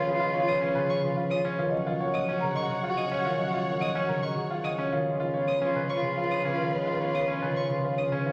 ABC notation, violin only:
X:1
M:3/4
L:1/16
Q:1/4=108
K:Dbmix
V:1 name="Violin"
z3 e' z2 d' z2 e' z2 | z3 e' z2 d' z2 e' z2 | z3 e' z2 d' z2 e' z2 | z3 e' z2 d' z2 e' z2 |
z3 e' z2 d' z2 e' z2 |]